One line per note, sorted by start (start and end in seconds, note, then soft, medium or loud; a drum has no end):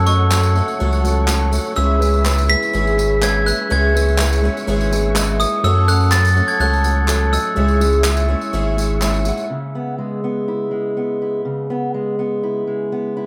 0.00 1.72 F#1 medium
0.00 0.62 F#2 loud
0.00 1.73 F#2 medium
0.00 0.06 F#3 loud
0.00 0.31 F#3 medium
0.00 0.06 A3 medium
0.00 0.06 C#4 medium
0.00 0.33 C#4 medium
0.00 0.32 F#4 medium
0.00 0.07 A4 medium
0.00 0.32 A4 medium
0.00 1.73 A4 medium
0.00 1.77 B4 medium
0.00 0.32 C#5 loud
0.00 5.59 C#5 medium
0.00 0.07 D#5 loud
0.00 1.73 F#5 medium
0.00 1.74 C#6 medium
0.06 0.28 F#3 medium
0.06 0.28 A3 medium
0.06 0.28 C#4 medium
0.06 0.28 A4 medium
0.06 0.28 D#5 loud
0.06 1.00 C#6 medium
0.06 tambourine medium
0.31 0.53 F#3 medium
0.31 0.56 F#3 medium
0.31 0.53 A3 medium
0.31 0.53 C#4 medium
0.31 0.57 C#4 medium
0.31 0.56 F#4 medium
0.31 0.53 A4 medium
0.31 0.55 A4 medium
0.31 0.53 C#5 medium
0.31 clap medium
0.31 tambourine medium
0.43 tambourine medium
0.55 0.77 F#3 medium
0.55 0.77 A3 medium
0.55 0.77 C#4 medium
0.55 0.79 C#4 soft
0.55 0.80 F#4 soft
0.55 0.80 A4 medium
0.55 0.77 A4 medium
0.55 0.77 E5 medium
0.55 tambourine soft
0.68 tambourine soft
0.78 1.59 C#2 medium
0.78 1.01 F#3 medium
0.78 1.27 F#3 medium
0.78 1.01 A3 medium
0.78 1.01 C#4 medium
0.78 1.28 C#4 medium
0.78 1.28 F#4 medium
0.78 1.01 A4 medium
0.78 1.29 A4 medium
0.78 1.01 C#5 loud
0.93 tambourine soft
1.03 1.25 F#3 medium
1.03 1.25 A3 medium
1.03 1.25 C#4 medium
1.03 1.26 A4 medium
1.03 1.26 C#5 medium
1.03 tambourine medium
1.26 1.49 F#3 medium
1.26 1.52 F#3 medium
1.26 1.49 A3 medium
1.26 1.49 C#4 medium
1.26 1.53 C#4 medium
1.26 1.52 F#4 medium
1.26 1.50 A4 medium
1.26 1.51 A4 medium
1.26 1.50 C#5 loud
1.26 clap medium
1.26 tambourine medium
1.51 1.73 F#3 medium
1.51 1.74 A3 medium
1.51 1.73 C#4 medium
1.51 1.77 C#4 soft
1.51 1.77 F#4 soft
1.51 1.77 A4 medium
1.51 1.74 A4 medium
1.51 1.74 C#5 medium
1.51 tambourine medium
1.65 tambourine soft
1.76 3.66 C#2 medium
1.76 2.56 C#2 loud
1.76 2.25 C#3 medium
1.76 3.66 C#3 medium
1.76 1.97 G#3 medium
1.76 2.23 G#3 medium
1.76 2.24 B3 medium
1.76 1.98 C#4 medium
1.76 1.98 E4 medium
1.76 2.25 E4 medium
1.76 5.60 G#4 medium
1.76 2.25 G#4 medium
1.76 1.98 B4 medium
1.76 1.99 C#5 loud
1.76 5.60 E5 medium
1.76 3.69 B5 medium
1.76 2.52 E6 medium
1.76 tambourine soft
1.99 2.21 G#3 medium
1.99 2.22 C#4 medium
1.99 2.22 E4 medium
1.99 2.22 B4 medium
1.99 2.22 C#5 loud
1.99 tambourine medium
2.14 tambourine soft
2.24 2.49 G#3 medium
2.24 2.46 G#3 medium
2.24 2.50 B3 medium
2.24 2.46 C#4 medium
2.24 2.47 E4 medium
2.24 2.49 E4 medium
2.24 2.47 G#4 medium
2.24 2.47 B4 medium
2.24 2.47 C#5 medium
2.24 clap loud
2.24 tambourine medium
2.38 tambourine medium
2.48 2.71 G#3 medium
2.48 2.73 B3 soft
2.48 2.71 C#4 medium
2.48 2.71 E4 medium
2.48 2.73 E4 soft
2.48 2.73 G#4 medium
2.48 2.71 B4 medium
2.48 2.71 E5 medium
2.48 3.25 B6 loud
2.48 tambourine soft
2.62 tambourine soft
2.73 3.53 G#1 medium
2.73 3.22 C#3 medium
2.73 3.21 G#3 medium
2.73 2.95 G#3 medium
2.73 3.22 B3 medium
2.73 2.95 C#4 medium
2.73 3.23 E4 medium
2.73 2.95 E4 medium
2.73 3.23 G#4 medium
2.73 2.96 B4 medium
2.73 2.96 C#5 medium
2.73 tambourine soft
2.87 tambourine soft
2.97 3.19 G#3 medium
2.97 3.19 C#4 medium
2.97 3.19 E4 medium
2.97 3.19 B4 medium
2.97 3.20 C#5 medium
2.97 tambourine medium
3.21 3.43 G#3 medium
3.21 3.46 G#3 medium
3.21 3.47 B3 medium
3.21 3.43 C#4 medium
3.21 3.43 E4 medium
3.21 3.46 E4 medium
3.21 3.45 G#4 medium
3.21 3.44 B4 medium
3.21 3.44 C#5 loud
3.21 3.48 G#6 medium
3.21 clap medium
3.21 tambourine medium
3.46 3.68 G#3 medium
3.46 3.70 B3 soft
3.46 3.68 C#4 medium
3.46 3.68 E4 medium
3.46 3.70 E4 soft
3.46 3.70 G#4 soft
3.46 3.68 B4 medium
3.46 3.68 C#5 medium
3.46 3.71 F#6 medium
3.46 tambourine medium
3.69 5.60 C#2 medium
3.69 4.49 C#2 loud
3.69 5.60 C#3 medium
3.69 4.19 C#3 medium
3.69 3.91 G#3 loud
3.69 4.18 G#3 medium
3.69 4.19 B3 medium
3.69 3.92 C#4 medium
3.69 3.92 E4 medium
3.69 4.19 E4 medium
3.69 4.20 G#4 medium
3.69 3.92 B4 medium
3.69 3.92 C#5 loud
3.69 9.46 C#6 medium
3.69 4.64 G#6 medium
3.69 tambourine soft
3.94 4.16 G#3 medium
3.94 4.16 C#4 medium
3.94 4.16 E4 medium
3.94 4.16 B4 medium
3.94 4.17 E5 loud
3.94 tambourine medium
4.08 tambourine soft
4.18 4.40 G#3 medium
4.18 4.43 G#3 medium
4.18 4.44 B3 medium
4.18 4.40 C#4 medium
4.18 4.41 E4 medium
4.18 4.44 E4 medium
4.18 4.43 G#4 medium
4.18 4.41 B4 medium
4.18 4.41 C#5 medium
4.18 clap loud
4.18 tambourine loud
4.33 tambourine medium
4.42 4.64 G#3 medium
4.42 4.67 B3 soft
4.42 4.64 C#4 medium
4.42 4.65 E4 medium
4.42 4.67 E4 medium
4.42 4.68 G#4 medium
4.42 4.65 B4 medium
4.42 4.65 C#5 loud
4.42 tambourine soft
4.57 tambourine soft
4.67 5.46 G#1 medium
4.67 5.16 C#3 medium
4.67 4.88 G#3 medium
4.67 5.14 G#3 medium
4.67 5.15 B3 loud
4.67 4.89 C#4 medium
4.67 4.89 E4 medium
4.67 5.16 E4 loud
4.67 5.16 G#4 loud
4.67 4.89 B4 medium
4.67 4.89 C#5 loud
4.67 tambourine soft
4.81 tambourine soft
4.91 5.12 G#3 medium
4.91 5.13 C#4 medium
4.91 5.13 E4 medium
4.91 5.13 B4 medium
4.91 5.14 C#5 loud
4.91 tambourine medium
5.14 5.36 G#3 loud
5.14 5.40 G#3 medium
5.14 5.40 B3 medium
5.14 5.37 C#4 loud
5.14 5.37 E4 medium
5.14 5.40 E4 medium
5.14 5.39 G#4 medium
5.14 5.37 B4 loud
5.14 5.37 D#5 loud
5.14 clap loud
5.14 tambourine loud
5.38 5.60 G#3 medium
5.38 5.64 B3 soft
5.38 5.60 C#4 medium
5.38 5.61 E4 medium
5.38 5.64 E4 soft
5.38 5.64 G#4 soft
5.38 5.61 B4 medium
5.38 5.61 C#5 medium
5.38 5.65 D#6 medium
5.38 tambourine medium
5.62 7.52 F#1 medium
5.62 7.52 F#2 medium
5.62 6.42 F#2 loud
5.62 5.84 F#3 medium
5.62 6.11 F#3 medium
5.62 5.85 A3 medium
5.62 5.85 C#4 medium
5.62 6.13 C#4 medium
5.62 6.13 F#4 loud
5.62 5.85 A4 medium
5.62 7.55 A4 medium
5.62 6.13 A4 loud
5.62 9.46 C#5 medium
5.62 5.85 C#5 loud
5.62 7.55 F#5 medium
5.62 5.89 E6 medium
5.62 tambourine soft
5.87 6.09 F#3 medium
5.87 6.09 A3 medium
5.87 6.09 C#4 medium
5.87 6.09 A4 medium
5.87 6.10 C#5 loud
5.87 6.13 F#6 loud
5.87 tambourine medium
6.01 tambourine soft
6.11 6.33 F#3 medium
6.11 6.36 F#3 medium
6.11 6.33 A3 medium
6.11 6.33 C#4 medium
6.11 6.37 C#4 medium
6.11 6.36 F#4 medium
6.11 6.33 A4 medium
6.11 6.35 A4 medium
6.11 6.34 C#5 medium
6.11 6.49 A6 loud
6.11 clap loud
6.11 tambourine loud
6.25 tambourine medium
6.35 6.57 F#3 medium
6.35 6.57 A3 medium
6.35 6.57 C#4 medium
6.35 6.60 C#4 soft
6.35 6.61 F#4 medium
6.35 6.60 A4 medium
6.35 6.58 A4 medium
6.35 6.58 C#5 medium
6.35 tambourine soft
6.48 6.59 G#6 loud
6.48 tambourine soft
6.59 7.38 C#2 medium
6.59 6.81 F#3 medium
6.59 7.06 F#3 medium
6.59 6.81 A3 medium
6.59 6.81 C#4 medium
6.59 7.08 C#4 medium
6.59 7.08 F#4 medium
6.59 6.81 A4 medium
6.59 7.08 A4 medium
6.59 6.82 C#5 medium
6.59 7.35 F#6 loud
6.59 tambourine soft
6.73 tambourine soft
6.84 7.05 F#3 medium
6.84 7.05 A3 medium
6.84 7.06 C#4 medium
6.84 7.06 A4 medium
6.84 7.06 C#5 medium
6.84 tambourine medium
7.07 7.56 F#3 medium
7.07 7.29 F#3 medium
7.07 7.30 A3 medium
7.07 7.30 C#4 medium
7.07 7.56 C#4 medium
7.07 7.57 F#4 medium
7.07 7.30 A4 medium
7.07 7.57 A4 medium
7.07 7.30 C#5 loud
7.07 clap loud
7.07 tambourine loud
7.31 7.53 F#3 medium
7.31 7.53 A3 medium
7.31 7.53 C#4 medium
7.31 7.54 A4 medium
7.31 7.54 D#5 medium
7.31 9.22 E6 medium
7.31 tambourine medium
7.55 9.46 C#2 medium
7.55 8.35 C#2 loud
7.55 9.46 C#3 medium
7.55 8.05 C#3 medium
7.55 7.77 G#3 medium
7.55 8.02 G#3 medium
7.55 7.77 C#4 medium
7.55 8.03 C#4 medium
7.55 7.78 E4 medium
7.55 8.03 E4 medium
7.55 9.48 G#4 medium
7.55 8.04 G#4 medium
7.55 7.78 C#5 medium
7.55 9.48 E5 medium
7.55 7.78 E5 loud
7.68 tambourine soft
7.80 8.02 G#3 loud
7.80 8.02 C#4 medium
7.80 8.02 E4 medium
7.80 8.02 C#5 medium
7.80 8.03 E5 loud
7.80 tambourine medium
7.93 tambourine soft
8.03 8.28 G#3 medium
8.03 8.26 G#3 medium
8.03 8.29 C#4 medium
8.03 8.26 C#4 medium
8.03 8.29 E4 medium
8.03 8.26 E4 medium
8.03 8.27 G#4 medium
8.03 8.26 C#5 medium
8.03 8.26 E5 loud
8.03 clap loud
8.03 tambourine loud
8.17 tambourine medium
8.28 8.50 G#3 medium
8.28 8.50 C#4 medium
8.28 8.53 C#4 soft
8.28 8.50 E4 medium
8.28 8.53 E4 medium
8.28 8.53 G#4 medium
8.28 8.50 C#5 medium
8.28 8.51 E5 loud
8.41 tambourine soft
8.53 9.32 G#1 medium
8.53 9.01 C#3 medium
8.53 8.74 G#3 medium
8.53 9.00 G#3 medium
8.53 8.75 C#4 medium
8.53 9.00 C#4 medium
8.53 8.75 E4 medium
8.53 9.02 E4 medium
8.53 9.02 G#4 medium
8.53 8.75 C#5 medium
8.53 8.75 E5 medium
8.53 tambourine soft
8.77 8.98 G#3 medium
8.77 8.99 C#4 medium
8.77 8.99 E4 medium
8.77 8.99 C#5 medium
8.77 8.99 E5 medium
8.77 tambourine medium
9.01 9.25 G#3 medium
9.01 9.23 G#3 loud
9.01 9.26 C#4 medium
9.01 9.23 C#4 medium
9.01 9.23 E4 loud
9.01 9.27 E4 medium
9.01 9.25 G#4 medium
9.01 9.23 C#5 medium
9.01 9.24 E5 loud
9.01 clap medium
9.01 tambourine medium
9.14 tambourine soft
9.25 9.47 G#3 medium
9.25 9.48 C#4 medium
9.25 9.52 C#4 soft
9.25 9.48 E4 medium
9.25 9.51 E4 soft
9.25 9.50 G#4 medium
9.25 9.48 C#5 medium
9.25 9.48 F#5 medium
9.25 tambourine medium
9.37 tambourine soft
9.50 11.44 C#3 soft
9.75 10.23 B3 soft
9.98 10.70 G#3 soft
10.24 10.96 B3 soft
10.48 11.21 E4 soft
10.71 11.41 G#3 soft
10.97 11.69 B3 soft
11.22 11.42 E4 soft
11.45 13.26 C#3 soft
11.70 12.18 B3 soft
11.94 12.66 G#3 soft
12.19 12.91 B3 soft
12.43 13.15 E4 soft
12.67 13.26 G#3 soft
12.92 13.26 B3 soft
13.17 13.26 E4 soft